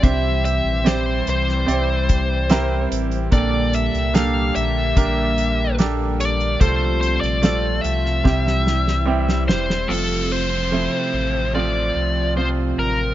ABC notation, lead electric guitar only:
X:1
M:4/4
L:1/16
Q:1/4=73
K:F
V:1 name="Lead electric guitar"
e2 e2 c2 c8 z2 | d2 e2 f2 e2 e4 z2 d2 | c2 c d3 e8 c2 | A2 c6 d4 c2 B2 |]